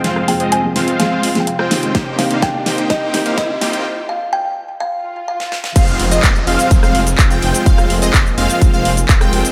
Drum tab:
CC |----------------|----------------|----------------|x---------------|
HH |x-oxx-oxx-oxx-ox|x-oxx-oxx-oxx-ox|----------------|xxoxx-oxx-oxxxox|
SH |----------------|----------------|----------------|xx-xxx-xxx-xxx-x|
CP |----------------|----------------|----------------|----x-------x---|
SD |or----o-o--o-ro-|o-o-o-o-o-o-o-o-|-------------ooo|---------r------|
BD |----------------|o---o---o---o---|----------------|o---o---o---o---|

CC |----------------|
HH |xxoxx-oxx-oxxxox|
SH |xx-xxx-xxx-xxx-x|
CP |----x-------x---|
SD |-r-----------r--|
BD |o---o---o---o---|